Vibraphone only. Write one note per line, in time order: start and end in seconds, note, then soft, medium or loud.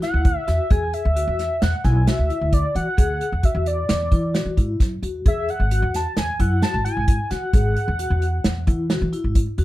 0.02 0.26 E4 medium
0.47 0.59 F#4 medium
0.70 0.94 G#4 medium
1.16 1.40 F#4 medium
1.84 1.96 E4 medium
2.07 2.19 F#4 medium
2.30 2.53 E4 medium
2.75 2.87 F#4 medium
2.97 3.21 G#4 medium
3.43 3.67 F#4 medium
4.11 4.23 E4 medium
4.34 4.46 F#4 medium
4.57 4.81 E4 medium
5.03 5.15 F#4 medium
5.26 5.49 G#4 medium
5.72 5.95 F#4 medium
6.40 6.51 E4 medium
6.62 6.74 F#4 medium
6.85 7.09 E4 medium
7.30 7.42 F#4 medium
7.53 7.77 G#4 medium
7.99 8.23 F#4 medium
8.67 8.79 E4 medium
8.90 9.02 F#4 medium
9.13 9.36 E4 medium
9.58 9.65 F#4 medium